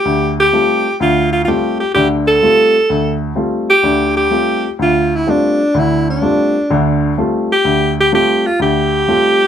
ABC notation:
X:1
M:4/4
L:1/16
Q:"Swing" 1/4=126
K:C
V:1 name="Alto saxophone"
G2 G6 F2 F3/2 F/2 G2 G2 | G2 A8 z4 G2- | G2 G6 F2 E2 D4 | E2 D8 z4 G2- |
G2 G2 G2 F2 G8 |]
V:2 name="Upright piano"
D,,4 [G,A,CF]2 z2 D,,4 [G,A,CF]2 z2 | [D,,D,]4 [G,A,CF]2 z2 D,,4 [G,A,CF]2 z2 | [D,,D,]4 [G,A,CF]2 z2 D,,4 [G,A,CF]2 z2 | [D,,D,]4 [G,A,CF]2 z2 [D,,D,]4 [G,A,CF]2 z2 |
D,,4 [G,A,CF]2 z2 D,,4 [G,A,CF]2 z2 |]